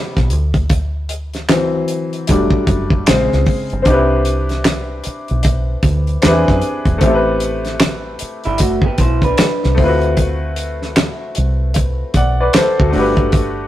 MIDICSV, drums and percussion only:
0, 0, Header, 1, 2, 480
1, 0, Start_track
1, 0, Tempo, 789474
1, 423, Time_signature, 4, 2, 24, 8
1, 8315, End_track
2, 0, Start_track
2, 0, Title_t, "Drums"
2, 100, Note_on_c, 9, 38, 35
2, 102, Note_on_c, 9, 36, 96
2, 160, Note_off_c, 9, 38, 0
2, 162, Note_off_c, 9, 36, 0
2, 183, Note_on_c, 9, 42, 50
2, 244, Note_off_c, 9, 42, 0
2, 328, Note_on_c, 9, 36, 85
2, 328, Note_on_c, 9, 42, 34
2, 388, Note_off_c, 9, 42, 0
2, 389, Note_off_c, 9, 36, 0
2, 423, Note_on_c, 9, 42, 70
2, 426, Note_on_c, 9, 36, 100
2, 483, Note_off_c, 9, 42, 0
2, 486, Note_off_c, 9, 36, 0
2, 663, Note_on_c, 9, 42, 74
2, 724, Note_off_c, 9, 42, 0
2, 812, Note_on_c, 9, 42, 35
2, 819, Note_on_c, 9, 38, 32
2, 873, Note_off_c, 9, 42, 0
2, 880, Note_off_c, 9, 38, 0
2, 904, Note_on_c, 9, 26, 82
2, 904, Note_on_c, 9, 42, 77
2, 908, Note_on_c, 9, 38, 108
2, 964, Note_off_c, 9, 26, 0
2, 965, Note_off_c, 9, 42, 0
2, 969, Note_off_c, 9, 38, 0
2, 1142, Note_on_c, 9, 42, 65
2, 1203, Note_off_c, 9, 42, 0
2, 1294, Note_on_c, 9, 42, 34
2, 1355, Note_off_c, 9, 42, 0
2, 1382, Note_on_c, 9, 42, 94
2, 1393, Note_on_c, 9, 36, 90
2, 1443, Note_off_c, 9, 42, 0
2, 1454, Note_off_c, 9, 36, 0
2, 1523, Note_on_c, 9, 36, 92
2, 1584, Note_off_c, 9, 36, 0
2, 1624, Note_on_c, 9, 36, 92
2, 1624, Note_on_c, 9, 42, 70
2, 1685, Note_off_c, 9, 36, 0
2, 1685, Note_off_c, 9, 42, 0
2, 1766, Note_on_c, 9, 36, 86
2, 1827, Note_off_c, 9, 36, 0
2, 1863, Note_on_c, 9, 42, 77
2, 1866, Note_on_c, 9, 26, 84
2, 1871, Note_on_c, 9, 38, 109
2, 1924, Note_off_c, 9, 42, 0
2, 1927, Note_off_c, 9, 26, 0
2, 1932, Note_off_c, 9, 38, 0
2, 2021, Note_on_c, 9, 38, 33
2, 2082, Note_off_c, 9, 38, 0
2, 2103, Note_on_c, 9, 46, 35
2, 2107, Note_on_c, 9, 36, 92
2, 2164, Note_off_c, 9, 46, 0
2, 2168, Note_off_c, 9, 36, 0
2, 2249, Note_on_c, 9, 42, 34
2, 2310, Note_off_c, 9, 42, 0
2, 2343, Note_on_c, 9, 42, 66
2, 2346, Note_on_c, 9, 36, 102
2, 2404, Note_off_c, 9, 42, 0
2, 2407, Note_off_c, 9, 36, 0
2, 2584, Note_on_c, 9, 42, 70
2, 2645, Note_off_c, 9, 42, 0
2, 2732, Note_on_c, 9, 42, 32
2, 2739, Note_on_c, 9, 38, 30
2, 2793, Note_off_c, 9, 42, 0
2, 2800, Note_off_c, 9, 38, 0
2, 2823, Note_on_c, 9, 26, 86
2, 2824, Note_on_c, 9, 42, 71
2, 2828, Note_on_c, 9, 38, 105
2, 2884, Note_off_c, 9, 26, 0
2, 2884, Note_off_c, 9, 42, 0
2, 2889, Note_off_c, 9, 38, 0
2, 3062, Note_on_c, 9, 42, 71
2, 3123, Note_off_c, 9, 42, 0
2, 3212, Note_on_c, 9, 42, 34
2, 3272, Note_off_c, 9, 42, 0
2, 3301, Note_on_c, 9, 42, 92
2, 3312, Note_on_c, 9, 36, 87
2, 3362, Note_off_c, 9, 42, 0
2, 3373, Note_off_c, 9, 36, 0
2, 3543, Note_on_c, 9, 36, 90
2, 3543, Note_on_c, 9, 42, 73
2, 3604, Note_off_c, 9, 36, 0
2, 3604, Note_off_c, 9, 42, 0
2, 3692, Note_on_c, 9, 42, 32
2, 3753, Note_off_c, 9, 42, 0
2, 3782, Note_on_c, 9, 42, 81
2, 3784, Note_on_c, 9, 26, 81
2, 3789, Note_on_c, 9, 38, 105
2, 3842, Note_off_c, 9, 42, 0
2, 3845, Note_off_c, 9, 26, 0
2, 3850, Note_off_c, 9, 38, 0
2, 3938, Note_on_c, 9, 38, 33
2, 3941, Note_on_c, 9, 36, 94
2, 3999, Note_off_c, 9, 38, 0
2, 4002, Note_off_c, 9, 36, 0
2, 4022, Note_on_c, 9, 42, 48
2, 4083, Note_off_c, 9, 42, 0
2, 4167, Note_on_c, 9, 42, 33
2, 4168, Note_on_c, 9, 36, 88
2, 4228, Note_off_c, 9, 36, 0
2, 4228, Note_off_c, 9, 42, 0
2, 4261, Note_on_c, 9, 42, 68
2, 4265, Note_on_c, 9, 36, 100
2, 4322, Note_off_c, 9, 42, 0
2, 4325, Note_off_c, 9, 36, 0
2, 4501, Note_on_c, 9, 42, 77
2, 4562, Note_off_c, 9, 42, 0
2, 4649, Note_on_c, 9, 42, 33
2, 4656, Note_on_c, 9, 38, 32
2, 4710, Note_off_c, 9, 42, 0
2, 4717, Note_off_c, 9, 38, 0
2, 4740, Note_on_c, 9, 26, 89
2, 4741, Note_on_c, 9, 42, 77
2, 4745, Note_on_c, 9, 38, 110
2, 4801, Note_off_c, 9, 26, 0
2, 4802, Note_off_c, 9, 42, 0
2, 4806, Note_off_c, 9, 38, 0
2, 4979, Note_on_c, 9, 42, 69
2, 5040, Note_off_c, 9, 42, 0
2, 5129, Note_on_c, 9, 42, 33
2, 5190, Note_off_c, 9, 42, 0
2, 5217, Note_on_c, 9, 42, 92
2, 5230, Note_on_c, 9, 36, 89
2, 5278, Note_off_c, 9, 42, 0
2, 5291, Note_off_c, 9, 36, 0
2, 5360, Note_on_c, 9, 36, 89
2, 5421, Note_off_c, 9, 36, 0
2, 5459, Note_on_c, 9, 42, 76
2, 5462, Note_on_c, 9, 36, 90
2, 5520, Note_off_c, 9, 42, 0
2, 5523, Note_off_c, 9, 36, 0
2, 5604, Note_on_c, 9, 36, 84
2, 5610, Note_on_c, 9, 42, 33
2, 5665, Note_off_c, 9, 36, 0
2, 5671, Note_off_c, 9, 42, 0
2, 5700, Note_on_c, 9, 42, 81
2, 5703, Note_on_c, 9, 26, 88
2, 5708, Note_on_c, 9, 38, 103
2, 5761, Note_off_c, 9, 42, 0
2, 5764, Note_off_c, 9, 26, 0
2, 5768, Note_off_c, 9, 38, 0
2, 5859, Note_on_c, 9, 38, 32
2, 5919, Note_off_c, 9, 38, 0
2, 5942, Note_on_c, 9, 46, 36
2, 5946, Note_on_c, 9, 36, 92
2, 6003, Note_off_c, 9, 46, 0
2, 6006, Note_off_c, 9, 36, 0
2, 6089, Note_on_c, 9, 42, 34
2, 6150, Note_off_c, 9, 42, 0
2, 6182, Note_on_c, 9, 42, 69
2, 6185, Note_on_c, 9, 36, 100
2, 6243, Note_off_c, 9, 42, 0
2, 6246, Note_off_c, 9, 36, 0
2, 6422, Note_on_c, 9, 42, 72
2, 6483, Note_off_c, 9, 42, 0
2, 6580, Note_on_c, 9, 38, 33
2, 6640, Note_off_c, 9, 38, 0
2, 6663, Note_on_c, 9, 26, 84
2, 6664, Note_on_c, 9, 42, 76
2, 6668, Note_on_c, 9, 38, 108
2, 6724, Note_off_c, 9, 26, 0
2, 6725, Note_off_c, 9, 42, 0
2, 6729, Note_off_c, 9, 38, 0
2, 6900, Note_on_c, 9, 42, 70
2, 6961, Note_off_c, 9, 42, 0
2, 7139, Note_on_c, 9, 42, 94
2, 7151, Note_on_c, 9, 36, 85
2, 7200, Note_off_c, 9, 42, 0
2, 7212, Note_off_c, 9, 36, 0
2, 7380, Note_on_c, 9, 42, 70
2, 7382, Note_on_c, 9, 36, 91
2, 7441, Note_off_c, 9, 42, 0
2, 7443, Note_off_c, 9, 36, 0
2, 7620, Note_on_c, 9, 42, 84
2, 7623, Note_on_c, 9, 26, 83
2, 7627, Note_on_c, 9, 38, 105
2, 7681, Note_off_c, 9, 42, 0
2, 7684, Note_off_c, 9, 26, 0
2, 7688, Note_off_c, 9, 38, 0
2, 7780, Note_on_c, 9, 36, 96
2, 7841, Note_off_c, 9, 36, 0
2, 7862, Note_on_c, 9, 46, 36
2, 7923, Note_off_c, 9, 46, 0
2, 8006, Note_on_c, 9, 42, 35
2, 8007, Note_on_c, 9, 36, 93
2, 8067, Note_off_c, 9, 42, 0
2, 8068, Note_off_c, 9, 36, 0
2, 8100, Note_on_c, 9, 42, 69
2, 8104, Note_on_c, 9, 36, 101
2, 8161, Note_off_c, 9, 42, 0
2, 8165, Note_off_c, 9, 36, 0
2, 8315, End_track
0, 0, End_of_file